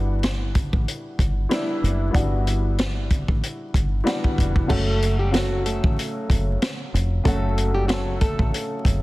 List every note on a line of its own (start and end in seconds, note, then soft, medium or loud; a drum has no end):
0.00 0.69 G1 loud
0.00 0.45 E3 medium
0.00 0.45 G3 medium
0.00 0.46 B3 medium
0.00 0.47 D4 medium
0.00 0.47 F#4 medium
0.23 cross-stick medium
0.23 snare loud
0.23 closed hi-hat medium
0.55 kick medium
0.55 closed hi-hat medium
0.73 0.84 A1 medium
0.73 kick medium
0.88 closed hi-hat medium
1.19 1.45 G1 medium
1.19 kick medium
1.19 closed hi-hat medium
1.49 1.94 E3 medium
1.49 1.95 G3 medium
1.49 1.95 B3 medium
1.49 1.96 D4 medium
1.49 cross-stick medium
1.49 snare loud
1.49 closed hi-hat medium
1.54 1.97 E4 loud
1.83 2.09 F#1 medium
1.83 closed hi-hat medium
2.11 3.00 E3 medium
2.11 3.00 G3 medium
2.11 3.01 B3 medium
2.11 3.01 D4 medium
2.11 kick loud
2.15 3.24 G1 loud
2.15 3.02 F#4 medium
2.15 closed hi-hat medium
2.47 closed hi-hat medium
2.78 cross-stick medium
2.78 snare loud
2.78 closed hi-hat medium
3.10 kick medium
3.10 closed hi-hat medium
3.28 3.40 A1 medium
3.28 kick medium
3.43 closed hi-hat medium
3.74 4.00 G1 medium
3.74 kick medium
3.74 closed hi-hat medium
4.04 4.49 E3 medium
4.04 4.50 G3 medium
4.04 4.50 B3 medium
4.04 4.51 D4 medium
4.04 cross-stick medium
4.04 snare loud
4.04 closed hi-hat medium
4.08 4.51 F#4 medium
4.24 kick medium
4.38 4.64 F1 medium
4.38 kick medium
4.38 closed hi-hat medium
4.56 kick medium
4.67 5.80 F#1 loud
4.67 5.13 C#3 medium
4.67 5.13 F#3 medium
4.67 5.14 A3 medium
4.67 5.17 A3 medium
4.67 5.14 C#4 medium
4.67 5.16 A4 loud
4.67 kick loud
4.67 crash loud
4.71 5.15 F#4 medium
5.02 closed hi-hat medium
5.19 5.33 G3 medium
5.19 5.32 G4 medium
5.31 6.20 C#3 medium
5.31 6.20 F#3 medium
5.31 5.63 F#3 medium
5.31 6.21 A3 medium
5.31 6.21 C#4 medium
5.31 5.62 F#4 medium
5.31 cross-stick medium
5.31 snare loud
5.31 closed hi-hat medium
5.36 6.22 F#4 medium
5.66 6.58 A3 medium
5.66 6.57 A4 medium
5.66 closed hi-hat medium
5.84 5.95 A1 medium
5.84 kick loud
5.99 closed hi-hat medium
6.30 6.55 F#1 medium
6.30 kick medium
6.30 closed hi-hat medium
6.62 cross-stick loud
6.62 snare loud
6.62 closed hi-hat medium
6.94 7.19 F1 loud
6.94 closed hi-hat medium
7.24 8.35 F#1 loud
7.24 7.69 C#3 medium
7.24 7.69 F#3 medium
7.24 7.70 A3 medium
7.24 7.72 A3 medium
7.24 7.70 C#4 medium
7.24 7.72 A4 loud
7.24 kick loud
7.24 closed hi-hat medium
7.28 7.71 F#4 medium
7.58 closed hi-hat medium
7.74 7.88 G3 medium
7.74 7.87 G4 medium
7.88 8.76 C#3 medium
7.88 8.18 F#3 medium
7.88 8.77 F#3 medium
7.88 8.77 A3 medium
7.88 8.78 C#4 medium
7.88 8.17 F#4 medium
7.88 cross-stick medium
7.88 snare loud
7.88 closed hi-hat medium
7.93 8.78 A4 medium
8.21 9.03 A3 medium
8.21 9.03 A4 medium
8.21 kick medium
8.21 closed hi-hat medium
8.39 8.50 A1 medium
8.39 kick loud
8.54 closed hi-hat medium
8.85 9.03 F#1 loud
8.85 kick medium
8.85 closed hi-hat medium